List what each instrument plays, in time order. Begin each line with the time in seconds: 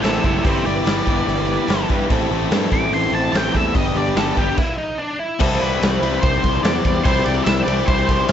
0.02 picked electric bass A1, steel-string acoustic guitar A2 E3 G3 C4 E4 A4, overdriven electric guitar A3, lead electric guitar C5 E5, snare, open hi-hat
0.23 picked electric bass F#1, steel-string acoustic guitar G3 C4 E4 A4, lead electric guitar C5 E5, kick
0.44 picked electric bass G1, steel-string acoustic guitar G3 D4 E4 B4, overdriven electric guitar B3 G4, lead electric guitar G4 E5, kick, open hi-hat
0.65 picked electric bass G1, overdriven electric guitar B3 E4 G4 B4, lead electric guitar D5
0.75 steel-string acoustic guitar D4 E4 B4
0.85 picked electric bass G1, steel-string acoustic guitar G3 D4 E4 B4, overdriven electric guitar B3 G4, snare, open hi-hat
1.05 picked electric bass G1, steel-string acoustic guitar G3 D4 E4 B4, overdriven electric guitar B3 G4, kick
1.17 steel-string acoustic guitar D4 E4 B4
1.27 picked electric bass G1, overdriven electric guitar G3 B3 E4 B4, open hi-hat
1.37 steel-string acoustic guitar D4 E4 B4
1.45 steel-string acoustic guitar G3 D4 E4 B4
1.51 overdriven electric guitar G3 B3
1.68 picked electric bass G1, steel-string acoustic guitar G3 D4 E4 B4, overdriven electric guitar B3 G4, snare, open hi-hat
1.89 picked electric bass G2, steel-string acoustic guitar G3 D4 E4 B4, overdriven electric guitar B3 G4, kick
2.09 picked electric bass A1, steel-string acoustic guitar A2 E3 G3 C4 E4 A4, overdriven electric guitar A3, kick, open hi-hat
2.30 picked electric bass A1, overdriven electric guitar C4 E4 A4
2.41 steel-string acoustic guitar G3 C4 E4 A4
2.51 picked electric bass G2, steel-string acoustic guitar A2 E3 G3 C4 E4 A4, overdriven electric guitar A3, snare, open hi-hat
2.71 picked electric bass A1, steel-string acoustic guitar G3 C4 E4 A4, overdriven electric guitar A3, lead electric guitar D6, kick
2.83 steel-string acoustic guitar G3 C4 E4 A4
2.91 picked electric bass A1, overdriven electric guitar A3 C4, lead electric guitar C6, open hi-hat
2.95 overdriven electric guitar E4 A4
3.04 steel-string acoustic guitar G3 C4 E4 A4
3.12 picked electric bass A1, steel-string acoustic guitar G3 C4 E4, lead electric guitar A5
3.16 overdriven electric guitar A3, steel-string acoustic guitar A4
3.33 picked electric bass A1, steel-string acoustic guitar A2 E3 G3 C4 E4 A4, overdriven electric guitar A3, lead electric guitar G5, snare, open hi-hat
3.54 picked electric bass E2, steel-string acoustic guitar G3 C4 E4 A4, lead electric guitar E5, kick
3.73 picked electric bass G1, overdriven electric guitar G2 D3, steel-string acoustic guitar G3 B3 D4 G4 A4, lead electric guitar D#5, kick, open hi-hat
3.94 picked electric bass G1, overdriven electric guitar G3 B3 D4 G4, lead electric guitar D5
3.99 overdriven electric guitar B3
4.06 steel-string acoustic guitar D4 G4 A4
4.15 picked electric bass G1, steel-string acoustic guitar G3 B3 D4 G4 A4, lead electric guitar A4, snare, open hi-hat
4.36 picked electric bass G1, overdriven electric guitar G3, steel-string acoustic guitar B3 D4 G4 A4, lead electric guitar G4, kick
4.49 steel-string acoustic guitar D4 G4 A4
4.58 lead electric guitar E4, kick, crash
4.78 lead electric guitar D#4
4.98 lead electric guitar D4
5.19 lead electric guitar E4
5.39 picked electric bass C2, steel-string acoustic guitar C3 E3 G3 C4 E4 C5, grand piano E4 G4 C5 E5, lead electric guitar A4, kick, crash
5.61 picked electric bass C2, steel-string acoustic guitar G3 C4 E4 C5, lead electric guitar B4, ride
5.82 picked electric bass C2, steel-string acoustic guitar C3 E3 G3 C4 E4 C5, grand piano E4 G4 C5 E5, snare, ride
6.00 picked electric bass C2, overdriven electric guitar E3, steel-string acoustic guitar G3 C4, lead electric guitar B4, ride
6.04 overdriven electric guitar C3, steel-string acoustic guitar E4 C5
6.14 steel-string acoustic guitar G3 C4 E4 C5
6.21 picked electric bass C2, grand piano E4 G4 C5 E5, lead electric guitar C5, kick, ride
6.34 steel-string acoustic guitar G3 C4 E4 C5
6.43 picked electric bass C2, steel-string acoustic guitar G3 C4 E4 C5, kick, snare, ride
6.63 picked electric bass E2, steel-string acoustic guitar C3 E3 G3 C4 E4 C5, grand piano E4 G4 C5 E5, lead electric guitar D5, snare, ride
6.76 steel-string acoustic guitar G3 C4 E4 C5
6.85 picked electric bass E2, steel-string acoustic guitar G3 C4 E4 C5, kick, ride
7.03 picked electric bass C2, steel-string acoustic guitar C3, grand piano E4 G4 C5 G5, lead electric guitar C5, kick, ride
7.08 steel-string acoustic guitar E3 G3 C4 E4 C5
7.24 picked electric bass C2, steel-string acoustic guitar G3, lead electric guitar D5, ride
7.29 steel-string acoustic guitar C4 E4 C5
7.44 picked electric bass C2, steel-string acoustic guitar C3 E3 G3 C4 E4 C5, grand piano E4 G4 C5 E5, lead electric guitar E5, snare, ride
7.63 picked electric bass C2, steel-string acoustic guitar G3, lead electric guitar D5
7.68 overdriven electric guitar C3 E3, steel-string acoustic guitar C4 E4 C5, ride
7.78 steel-string acoustic guitar G3 C4 E4 C5
7.86 picked electric bass C2, grand piano E4 G4 C5 E5, lead electric guitar C5, kick, ride
7.98 steel-string acoustic guitar G3 C4 E4 C5
8.09 steel-string acoustic guitar G3 C4 E4 C5, kick, snare, ride
8.28 grand piano E4, ride